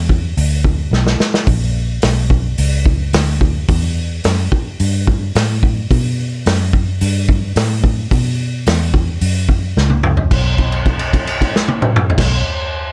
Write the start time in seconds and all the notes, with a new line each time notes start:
Already playing: E2
0.09 kick
0.37 D2, open hi-hat
0.65 kick
0.91 B1, snare
1.07 snare
1.20 snare
1.34 snare
1.47 A#1, kick, open hi-hat
2.02 B1, snare, open hi-hat
2.30 kick
2.58 C#2, open hi-hat
2.86 kick
3.13 D2, snare, open hi-hat
3.41 kick
3.68 E2, kick, open hi-hat
4.24 F#2, snare, open hi-hat
4.52 kick
4.80 G2, open hi-hat
5.07 kick
5.35 A2, snare, open hi-hat
5.63 kick
5.91 B2, kick, open hi-hat
6.46 F#2, snare, open hi-hat
6.73 kick
7.01 G2, open hi-hat
7.29 kick
7.56 A2, snare, open hi-hat
7.84 kick
8.11 B2, kick, open hi-hat
8.67 E2, snare, open hi-hat
8.94 kick
9.21 F#2, open hi-hat
9.49 kick
9.77 C#2, snare
9.90 high tom
10.03 mid tom
10.17 floor tom
10.31 B1, kick, crash
10.58 kick, crash
10.72 crash
10.86 kick, crash
10.99 crash
11.13 kick, crash
11.27 crash
11.41 kick, crash
11.56 snare
11.68 high tom
11.82 mid tom
11.96 mid tom
12.10 floor tom
12.18 B1, kick, snare, crash